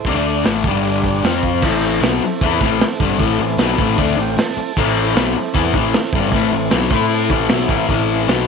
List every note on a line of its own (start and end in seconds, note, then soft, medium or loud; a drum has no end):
0.05 0.42 D2 loud
0.05 0.44 D3 medium
0.05 0.45 A3 medium
0.05 0.46 D4 loud
0.05 0.47 A4 medium
0.05 kick loud
0.05 open hi-hat medium
0.09 0.47 D4 medium
0.09 0.47 D5 medium
0.45 0.63 A1 medium
0.45 0.67 A2 medium
0.45 0.67 E3 medium
0.45 0.65 A3 loud
0.45 snare loud
0.45 open hi-hat medium
0.64 1.19 G1 medium
0.64 1.23 G2 medium
0.64 1.23 D3 medium
0.64 1.24 G3 medium
0.64 1.25 D4 medium
0.64 1.25 G4 medium
0.64 kick loud
0.68 1.25 D5 medium
0.85 open hi-hat medium
1.03 kick medium
1.03 snare soft
1.23 1.60 F2 medium
1.23 1.62 F3 loud
1.23 1.63 C4 loud
1.23 1.62 C4 medium
1.23 1.63 F4 loud
1.23 1.64 F4 medium
1.23 1.64 C5 medium
1.23 snare loud
1.23 open hi-hat medium
1.43 kick medium
1.62 2.00 A1 loud
1.62 2.02 A2 medium
1.62 2.02 E3 loud
1.62 2.02 A3 loud
1.62 4.72 C4 medium
1.62 4.73 E4 medium
1.62 4.73 A4 medium
1.62 kick loud
1.62 crash loud
2.01 2.20 B1 loud
2.01 2.21 B2 loud
2.01 2.22 F#3 medium
2.01 2.22 B3 loud
2.01 snare loud
2.01 open hi-hat medium
2.21 muted picked electric bass stroke soft
2.21 muted distorted electric guitar stroke medium
2.41 2.60 E2 medium
2.41 2.61 E3 loud
2.41 2.61 B3 loud
2.41 2.62 E4 loud
2.41 kick loud
2.41 open hi-hat medium
2.61 2.79 A1 loud
2.61 2.80 A2 medium
2.61 2.81 E3 loud
2.61 2.82 A3 loud
2.61 kick loud
2.61 snare soft
2.81 snare loud
2.81 open hi-hat medium
3.00 3.18 G1 loud
3.00 3.19 G2 medium
3.00 3.19 D3 medium
3.00 3.20 G3 loud
3.00 kick loud
3.19 3.38 A1 loud
3.19 3.37 A2 loud
3.19 3.38 E3 loud
3.19 3.39 A3 loud
3.19 kick loud
3.19 open hi-hat medium
3.38 3.57 A1 medium
3.38 3.55 A2 medium
3.38 3.55 E3 medium
3.58 3.77 B1 medium
3.58 3.78 B2 medium
3.58 3.78 F#3 loud
3.58 3.79 B3 loud
3.58 snare loud
3.58 open hi-hat medium
3.78 3.96 A1 medium
3.78 3.97 A2 medium
3.78 3.97 E3 loud
3.78 3.97 A3 loud
3.78 kick loud
3.97 4.15 D2 medium
3.97 4.16 D3 loud
3.97 4.17 A3 medium
3.97 4.17 D4 loud
3.97 kick loud
3.97 open hi-hat medium
4.15 4.35 A1 medium
4.15 4.33 A2 medium
4.15 4.33 E3 medium
4.21 4.38 G5 medium
4.37 muted distorted electric guitar stroke medium
4.37 muted picked electric bass stroke soft
4.37 snare loud
4.37 open hi-hat medium
4.43 4.77 A5 medium
4.49 snare soft
4.57 muted picked electric bass stroke soft
4.57 muted distorted electric guitar stroke medium
4.77 5.13 A1 loud
4.77 5.14 A2 medium
4.77 5.15 E3 medium
4.77 5.15 A3 loud
4.77 7.86 C4 medium
4.77 7.87 E4 medium
4.77 7.87 A4 medium
4.77 kick loud
4.77 crash loud
5.15 5.34 B1 loud
5.15 5.34 B2 medium
5.15 5.35 F#3 loud
5.15 5.35 B3 loud
5.15 snare loud
5.15 open hi-hat medium
5.36 muted picked electric bass stroke soft
5.36 muted distorted electric guitar stroke medium
5.53 5.73 E2 medium
5.53 5.73 E3 medium
5.53 5.74 B3 medium
5.53 5.74 E4 loud
5.53 kick loud
5.53 open hi-hat medium
5.73 5.92 A1 loud
5.73 5.93 A2 medium
5.73 5.94 E3 loud
5.73 5.94 A3 loud
5.73 kick loud
5.94 snare loud
5.94 open hi-hat medium
6.04 snare soft
6.13 6.30 G1 loud
6.13 6.33 G2 medium
6.13 6.32 D3 loud
6.13 6.33 G3 loud
6.13 kick loud
6.31 6.50 A1 medium
6.31 6.51 A2 medium
6.31 6.52 E3 medium
6.31 6.52 A3 loud
6.31 kick loud
6.31 open hi-hat medium
6.52 6.71 A1 medium
6.52 6.68 A2 medium
6.52 6.68 E3 medium
6.70 6.91 B1 medium
6.70 6.90 B2 medium
6.70 6.91 F#3 loud
6.70 6.91 B3 loud
6.70 snare loud
6.70 open hi-hat medium
6.91 7.28 A2 medium
6.91 7.30 A3 medium
6.91 7.30 E4 loud
6.91 7.31 A4 loud
6.91 7.10 C6 medium
6.91 kick loud
7.11 7.49 A5 medium
7.11 open hi-hat medium
7.29 7.48 A1 loud
7.29 7.49 A2 medium
7.29 7.50 E3 loud
7.29 7.50 A3 loud
7.29 kick loud
7.49 7.68 B1 loud
7.49 7.68 B2 loud
7.49 7.69 F#3 medium
7.49 7.70 B3 loud
7.49 snare loud
7.49 open hi-hat medium
7.53 7.88 E5 medium
7.69 7.87 A1 medium
7.69 7.87 A2 medium
7.69 7.88 E3 loud
7.69 7.89 A3 loud
7.69 kick loud
7.88 8.26 A1 medium
7.88 8.28 A2 medium
7.88 8.28 E3 loud
7.88 8.28 A3 medium
7.88 8.47 C4 medium
7.88 8.47 E4 medium
7.88 8.47 A4 medium
7.88 kick loud
7.88 open hi-hat medium
8.28 8.47 B1 loud
8.28 8.47 B2 medium
8.28 8.47 F#3 medium
8.28 8.47 B3 loud
8.28 snare loud
8.28 open hi-hat medium